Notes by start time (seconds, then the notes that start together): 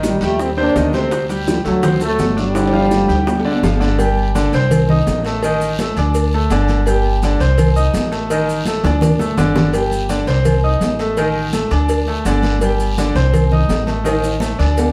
Already playing: A1 D#3 D#4 D#5
0.03 D#3 G3, high bongo, high conga, high timbale, low timbale, short guiro, maracas
0.21 D#2 F3 G3 A3 G4 G5, high conga, high timbale, short guiro, maracas
0.39 A3 C4, high bongo, high conga, long guiro, maracas
0.56 C3 A#3 C4 D4 C5, high bongo, high conga
0.75 D2 D#3 D#4 D#5, high bongo, low bongo, high conga, high timbale, low timbale, short guiro, maracas
0.93 C3 A3 C4 C5, high bongo, high conga, high timbale, short guiro, maracas
1.11 high bongo, high conga, high timbale, long guiro, maracas
1.29 G3 G4 G5, high bongo, high conga, high timbale, maracas
1.47 D3 F3, high bongo, high conga, low timbale, short guiro, maracas
1.65 D2 D3 F#3 A3 A4 A5, high conga, high timbale, short guiro, maracas
1.83 C4 C5 C6, high bongo, high conga, low conga, high timbale, long guiro, maracas
2.01 F#3 A3 A4 A5, high bongo, high conga, maracas
2.19 G1, high bongo, low bongo, high conga, high timbale, low timbale, short guiro, maracas
2.37 D3 G3 D4 D5 D6, high bongo, short guiro, maracas
2.55 D3 D4 D5, high bongo, high conga, high timbale, long guiro, maracas
2.67 high timbale
2.72 F3 F4 F5, high bongo, high conga
2.79 high timbale
2.91 high bongo, high conga, high timbale, short guiro, maracas
3.03 high timbale
3.08 D2 G3 G4 G5, high conga, short guiro, maracas
3.15 high timbale
3.27 high bongo, high conga, low timbale, long guiro, maracas
3.40 low timbale
3.45 D3 D4 D5, high bongo, high conga
3.52 low timbale
3.63 G1 F3 F4 F5, high bongo, low bongo, high conga, low timbale, short guiro, maracas
3.76 low timbale
3.80 D3 D4 D5, high bongo, high conga, short guiro, maracas
3.88 low timbale
3.99 G3 G4 G5, cowbell, high conga, low agogo, long guiro, maracas
4.18 high conga, low agogo
4.35 D3 D4 D5, cowbell, high conga, low timbale, short guiro, maracas
4.53 C2 C4 C5 C6, cowbell, high conga, low agogo, short guiro, maracas
4.71 cowbell, high conga, low conga, low agogo, long guiro, maracas
4.89 D#4 D#5 D#6, high conga, low conga
5.07 A1, cowbell, high conga, low timbale, low agogo, short guiro, maracas
5.25 A3 A4 A5, cowbell, short guiro, maracas
5.42 D#3 D#4 D#5, cowbell, high conga, low agogo, long guiro, maracas
5.60 high conga, maracas
5.79 A3 A4 A5, cowbell, high conga, low timbale, low agogo, short guiro, maracas
5.97 D2 D4 D5 D6, cowbell, high conga, low agogo, short guiro, maracas
6.14 cowbell, high conga, long guiro, maracas
6.33 A3 A4 A5, high conga, low agogo
6.50 G1 D3 D4 D5, cowbell, high conga, low timbale, low agogo, short guiro, maracas
6.68 cowbell, high conga, short guiro, maracas
6.86 G3 G4 G5, cowbell, high conga, low agogo, long guiro, maracas
7.04 high conga, low agogo
7.22 D3 D4 D5, cowbell, high conga, low timbale, short guiro, maracas
7.40 C2 C4 C5 C6, cowbell, high conga, low agogo, short guiro, maracas
7.58 cowbell, high conga, low conga, low agogo, long guiro, maracas
7.76 D#4 D#5 D#6, high conga, maracas
7.94 A1, cowbell, high conga, low timbale, low agogo, short guiro, maracas
8.12 A3 A4 A5, cowbell, short guiro, maracas
8.30 D#3 D#4 D#5, cowbell, high conga, low agogo, long guiro, maracas
8.47 high conga, maracas
8.65 A3 A4 A5, cowbell, high conga, low timbale, low agogo, short guiro, maracas
8.84 D2 D4 D5 D6, cowbell, high bongo, high conga, low agogo, short guiro, maracas
9.01 cowbell, high bongo, low conga, long guiro, maracas
9.19 A3 A4 A5, high conga, low agogo, maracas
9.37 G1 D3 D4 D5, cowbell, low conga, low timbale, low agogo, short guiro, maracas
9.56 cowbell, low bongo, low conga, short guiro, maracas
9.73 G3 G4 G5, cowbell, low agogo, long guiro, maracas
9.91 high conga, low agogo, maracas
10.09 D3 D4 D5, cowbell, high conga, low timbale, short guiro, maracas
10.27 C2 C4 C5 C6, cowbell, high conga, low agogo, short guiro, maracas
10.45 cowbell, high conga, low conga, low agogo, long guiro, maracas
10.64 D#4 D#5 D#6, high conga
10.81 A1, cowbell, high conga, low timbale, low agogo, short guiro, maracas
10.99 A3 A4 A5, cowbell, short guiro, maracas
11.16 D#3 D#4 D#5, cowbell, high conga, low agogo, long guiro, maracas
11.35 high conga
11.53 A3 A4 A5, cowbell, high conga, low timbale, low agogo, short guiro, maracas
11.71 D2 D4 D5 D6, cowbell, high conga, low agogo, short guiro, maracas
11.88 cowbell, high conga, long guiro, maracas
12.06 A3 A4 A5, high conga, low agogo
12.25 G1 D3 D4 D5, cowbell, high conga, low timbale, low agogo, short guiro, maracas
12.43 cowbell, high conga, short guiro, maracas
12.61 G3 G4 G5, cowbell, high conga, low agogo, long guiro, maracas
12.79 high conga, low agogo, maracas
12.98 D3 D4 D5, cowbell, high conga, low timbale, short guiro, maracas
13.15 C2 C4 C5 C6, cowbell, high conga, low agogo, short guiro, maracas
13.33 cowbell, high conga, low conga, low agogo, long guiro, maracas
13.51 D#4 D#5 D#6, high conga, low conga
13.69 A1, cowbell, high conga, low timbale, low agogo, short guiro, maracas
13.87 A3 A4 A5, cowbell, high conga, short guiro, maracas
14.04 D#3 D#4 D#5, cowbell, high conga, high timbale, low agogo, long guiro, maracas
14.23 high conga, high timbale, maracas
14.40 A3 A4 A5, cowbell, high conga, high timbale, low agogo, short guiro, maracas
14.59 D2 D4 D5 D6, cowbell, high conga, low agogo, short guiro, maracas
14.77 cowbell, high conga, low timbale, long guiro, maracas